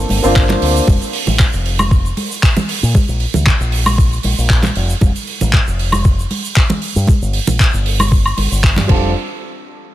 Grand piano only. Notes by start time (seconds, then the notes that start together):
Already playing: A#3 C4 D4 F4 A4
0.23 A#3 C4 D4 F4 C5
8.87 G3 C4 D4 F4 A4